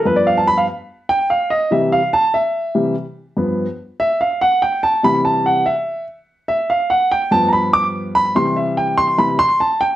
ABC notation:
X:1
M:4/4
L:1/16
Q:1/4=145
K:C
V:1 name="Grand piano"
B d f a b f z4 g2 f2 _e2 | e2 f2 a2 e6 z4 | z6 e2 f2 ^f2 g2 a2 | b2 a2 ^f2 e4 z4 e2 |
f2 ^f2 g2 a2 [_b=b]2 d'2 z2 b2 | c'2 e2 g2 c'2 b2 c'2 a2 g2 |]
V:2 name="Grand piano" clef=bass
[G,,F,B,]6 z8 z2 | [C,E,G,]2 z8 [C,E,G,]2 z4 | [G,,F,B,]2 z12 z2 | [C,E,G,]6 z8 z2 |
z6 [G,,F,B,]8- [G,,F,B,]2 | [C,E,G,]8 [C,E,G,]2 z6 |]